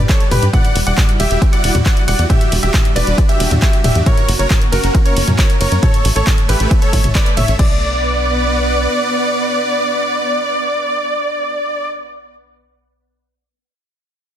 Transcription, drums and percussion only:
0.09 kick, clap, closed hi-hat
0.20 closed hi-hat
0.31 open hi-hat, mid tom
0.43 closed hi-hat
0.53 kick, closed hi-hat, mid tom, ride
0.65 closed hi-hat
0.76 open hi-hat, ride
0.87 closed hi-hat
0.98 kick, clap, closed hi-hat, mid tom, ride
1.09 closed hi-hat
1.20 open hi-hat, ride
1.31 closed hi-hat
1.42 kick, closed hi-hat, ride
1.53 closed hi-hat
1.64 open hi-hat, ride
1.75 closed hi-hat, mid tom
1.86 kick, clap, closed hi-hat, ride
1.97 closed hi-hat
2.08 open hi-hat, ride
2.19 closed hi-hat
2.30 kick, closed hi-hat, mid tom, ride
2.41 closed hi-hat
2.52 open hi-hat, ride
2.63 closed hi-hat
2.74 kick, clap, closed hi-hat, mid tom, ride
2.85 closed hi-hat
2.96 open hi-hat, ride
3.07 closed hi-hat
3.18 kick, closed hi-hat, ride
3.29 closed hi-hat
3.40 open hi-hat, ride
3.51 closed hi-hat, mid tom
3.62 kick, clap, closed hi-hat, ride
3.73 closed hi-hat
3.84 open hi-hat, mid tom, ride
3.95 closed hi-hat
4.06 kick, closed hi-hat, mid tom, ride
4.17 closed hi-hat
4.29 open hi-hat, ride
4.40 closed hi-hat
4.50 kick, clap, closed hi-hat, mid tom, ride
4.62 closed hi-hat
4.73 open hi-hat, ride
4.84 closed hi-hat
4.95 kick, closed hi-hat, ride
5.06 closed hi-hat
5.17 open hi-hat, ride
5.28 closed hi-hat, mid tom
5.39 kick, clap, closed hi-hat, ride
5.50 closed hi-hat
5.61 open hi-hat, ride
5.72 closed hi-hat
5.83 kick, closed hi-hat, mid tom, ride
5.94 closed hi-hat
6.05 open hi-hat, ride
6.16 closed hi-hat
6.27 kick, clap, closed hi-hat, mid tom, ride
6.38 closed hi-hat
6.49 open hi-hat, ride
6.60 closed hi-hat
6.71 kick, closed hi-hat, ride
6.82 closed hi-hat
6.93 kick, open hi-hat, ride
7.04 closed hi-hat, mid tom
7.15 kick, clap, closed hi-hat, ride
7.26 closed hi-hat
7.37 open hi-hat, mid tom, ride
7.48 closed hi-hat
7.59 kick, crash

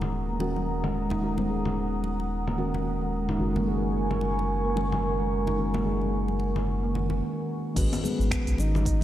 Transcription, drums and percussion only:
0.01 muted conga, low conga
0.40 muted conga
0.56 high conga
0.84 low conga
1.10 muted conga, low conga
1.38 high conga, low conga
1.65 high conga, low conga
2.04 muted conga
2.20 muted conga
2.47 low conga
2.74 low conga
3.29 low conga
3.56 high conga, low conga
4.11 high conga, low conga
4.21 muted conga
4.39 muted conga
4.77 muted conga
4.92 high conga, low conga
5.47 muted conga, low conga
5.74 high conga, low conga
6.01 high conga
6.28 high conga
6.40 muted conga, high conga
6.56 muted conga, low conga
6.95 low conga
7.10 low conga
7.76 kick, open hi-hat, crash, shaker
7.93 open hi-hat, low conga, shaker
8.04 high conga, shaker
8.21 shaker
8.31 finger snap, kick, open hi-hat, shaker
8.47 open hi-hat, shaker
8.58 muted conga, shaker
8.75 high conga, low conga, shaker
8.86 kick, open hi-hat, shaker

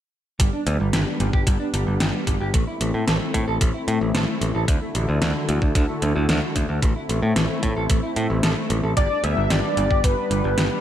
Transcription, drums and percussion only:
0.40 kick, closed hi-hat
0.67 closed hi-hat
0.93 snare, closed hi-hat
1.20 closed hi-hat
1.33 kick
1.47 kick, closed hi-hat
1.74 closed hi-hat
2.00 snare, closed hi-hat
2.27 kick, closed hi-hat
2.54 kick, closed hi-hat
2.81 closed hi-hat
3.08 snare, closed hi-hat
3.34 kick, closed hi-hat
3.61 kick, closed hi-hat
3.88 closed hi-hat
4.15 snare, closed hi-hat
4.41 closed hi-hat
4.68 kick, closed hi-hat
4.95 closed hi-hat
5.22 snare, closed hi-hat
5.49 closed hi-hat
5.62 kick
5.75 kick, closed hi-hat
6.02 closed hi-hat
6.29 snare, closed hi-hat
6.56 kick, closed hi-hat
6.82 kick, closed hi-hat
7.09 closed hi-hat
7.36 snare, closed hi-hat
7.63 kick, closed hi-hat
7.90 kick, closed hi-hat
8.16 closed hi-hat
8.43 snare, closed hi-hat
8.70 closed hi-hat
8.97 kick, closed hi-hat
9.24 closed hi-hat
9.50 snare, closed hi-hat
9.77 closed hi-hat
9.91 kick
10.04 kick, closed hi-hat
10.31 closed hi-hat
10.58 snare, closed hi-hat

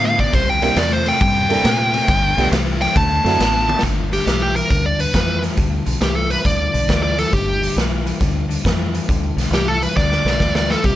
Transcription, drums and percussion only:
0.19 kick, ride
0.33 kick, snare, ride
0.62 snare, ride
0.76 snare, ride
1.06 snare, ride
1.21 kick, ride
1.50 ride
1.65 snare, ride
1.94 ride
2.08 kick, snare, ride
2.38 snare, ride
2.52 snare, ride
2.82 snare, ride
2.96 kick, ride
3.26 snare, ride
3.40 snare, ride
3.69 high tom
3.79 snare
3.83 kick, snare, closed hi-hat
4.13 snare, closed hi-hat
4.27 snare, closed hi-hat
4.56 closed hi-hat
4.70 kick, closed hi-hat
4.99 closed hi-hat
5.14 kick, snare, closed hi-hat
5.43 snare, closed hi-hat
5.57 kick, closed hi-hat
5.86 closed hi-hat
6.01 snare, closed hi-hat
6.30 closed hi-hat
6.45 kick, closed hi-hat
6.74 closed hi-hat
6.89 kick, snare, closed hi-hat
7.18 snare, closed hi-hat
7.33 kick, closed hi-hat
7.63 closed hi-hat
7.77 snare, closed hi-hat
8.07 closed hi-hat
8.21 kick, snare, closed hi-hat
8.51 closed hi-hat
8.65 kick, snare, closed hi-hat
8.95 closed hi-hat
9.09 kick, closed hi-hat
9.38 snare, closed hi-hat
9.53 snare, closed hi-hat
9.82 closed hi-hat
9.97 kick, snare
10.12 snare
10.26 snare
10.40 kick, snare
10.55 snare
10.70 snare
10.84 kick, closed hi-hat

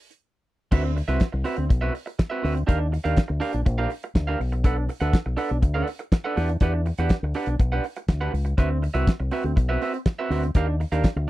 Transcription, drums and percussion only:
0.11 closed hi-hat
0.72 kick, crash
0.98 open hi-hat
1.08 closed hi-hat
1.20 kick, snare, closed hi-hat
1.45 open hi-hat
1.56 closed hi-hat
1.70 kick, closed hi-hat
1.95 open hi-hat
2.07 closed hi-hat
2.19 kick, snare, closed hi-hat
2.45 open hi-hat
2.57 closed hi-hat
2.69 kick, closed hi-hat
2.94 open hi-hat
3.05 closed hi-hat
3.17 kick, snare, closed hi-hat
3.41 open hi-hat
3.53 closed hi-hat
3.66 kick, closed hi-hat
3.90 open hi-hat
4.03 closed hi-hat
4.15 kick, snare, closed hi-hat
4.41 open hi-hat
4.53 closed hi-hat
4.64 kick, closed hi-hat
4.89 open hi-hat
5.01 closed hi-hat
5.13 kick, snare, closed hi-hat
5.37 open hi-hat
5.49 closed hi-hat
5.62 kick, closed hi-hat
5.87 open hi-hat
6.00 closed hi-hat
6.12 kick, snare, closed hi-hat
6.37 open hi-hat
6.49 closed hi-hat
6.60 kick, closed hi-hat
6.86 open hi-hat
6.98 closed hi-hat
7.09 kick, snare, closed hi-hat
7.34 open hi-hat
7.46 closed hi-hat
7.59 kick, closed hi-hat
7.84 open hi-hat
7.96 closed hi-hat
8.08 kick, snare, closed hi-hat
8.34 open hi-hat
8.46 closed hi-hat
8.58 kick, closed hi-hat
8.84 open hi-hat
8.95 closed hi-hat
9.07 kick, snare, closed hi-hat
9.31 open hi-hat
9.43 closed hi-hat
9.57 kick, closed hi-hat
9.82 open hi-hat
9.94 closed hi-hat
10.06 kick, snare, closed hi-hat
10.31 open hi-hat
10.44 closed hi-hat
10.55 kick, closed hi-hat
10.81 open hi-hat
10.92 closed hi-hat
11.04 kick, snare, closed hi-hat

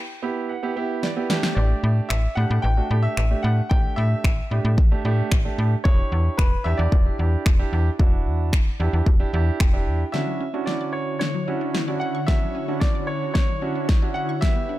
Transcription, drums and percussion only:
1.03 snare
1.30 snare
1.43 snare
2.10 finger snap
3.17 finger snap
3.71 kick
4.24 finger snap, kick
4.78 kick
5.32 finger snap, kick
5.85 kick
6.39 finger snap, kick
6.92 kick
7.46 finger snap, kick
8.00 kick
8.53 finger snap, kick
9.06 kick
9.60 finger snap, kick
10.14 snare
10.67 snare
11.21 snare
11.75 snare
12.28 kick, snare
12.81 kick, snare
13.35 kick, snare
13.89 kick, snare
14.42 kick, snare

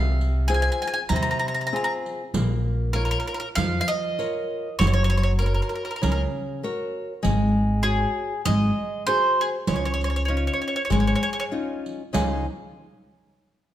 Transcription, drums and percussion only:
0.21 riq
0.50 riq
0.82 riq
1.10 riq
2.06 riq
2.34 riq
3.58 riq
4.20 riq
4.81 riq
6.03 riq
6.64 riq
7.24 riq
8.46 riq
9.06 riq
9.67 riq
10.01 riq
10.90 riq
11.86 riq
12.14 riq

